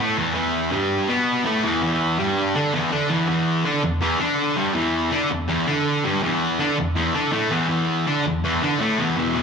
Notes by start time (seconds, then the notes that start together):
0.00 A2 A3
0.17 E2 E3
0.34 E2 E3
0.71 G2 G3
1.08 B2 B3
1.45 A2 A3
1.63 E2 E3
1.82 E2 E3
2.19 G2 G3
2.55 D3 D4
2.73 E2 E3
2.91 D3 D4
3.09 E2 E3
3.28 E2 E3
3.64 D3 D4
3.83 E2
4.01 E2 E3
4.19 D3 D4
4.56 G2 G3
4.74 E2 E3
5.11 D3 D4
5.30 E2
5.48 E2 E3
5.67 D3 D4
6.04 G2 G3
6.22 E2 E3
6.59 D3 D4
6.78 E2
6.96 E2 E3
7.14 D3 D4
7.32 A2 A3
7.51 E2 E3
7.70 E2 E3
8.07 D3 D4
8.25 E2
8.44 E2 E3
8.62 D3 D4
8.80 A2 A3
8.98 E2 E3
9.16 E2 B2 E3
9.35 B2 E3